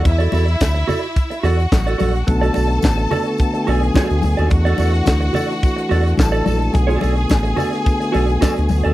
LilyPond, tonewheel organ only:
<<
  \new Staff \with { instrumentName = "Tonewheel organ" } { \time 4/4 \key e \mixolydian \tempo 4 = 107 r1 | <a fis'>1~ | <a fis'>1~ | <a fis'>1 | }
  \new Staff \with { instrumentName = "Tonewheel organ" } { \clef bass \time 4/4 \key e \mixolydian r1 | <d b>1 | <e d'>1 | <d b>1 | }
>>